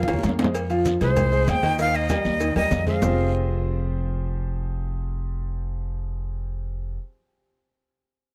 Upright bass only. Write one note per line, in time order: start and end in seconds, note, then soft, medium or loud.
0.08 0.23 D#2 medium
0.23 0.95 F2 medium
1.01 1.44 C2 medium
1.48 2.19 D#2 medium
2.25 2.54 D#2 loud
2.56 2.70 D#2 medium
2.71 2.99 F2 loud
3.03 6.96 F1 loud